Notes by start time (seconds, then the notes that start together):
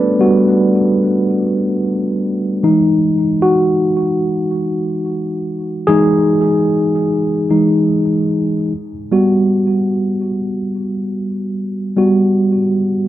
Already playing: G3 A3 B3 F#4 A4 B4
0.19 G3 B3 F#4
2.63 E3 G#3 D#4
3.42 F#4
5.87 E3 G#3 D#4 G#4
7.50 E3 G#3 D#4
9.12 G3 B3 F#4
11.97 G3 B3 F#4